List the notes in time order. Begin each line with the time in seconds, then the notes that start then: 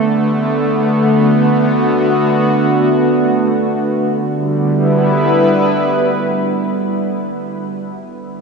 Already playing: D3 A3 B3 A4
1.09 F#4
4.21 D3
4.30 G3
4.45 B3
4.57 E4
4.68 B4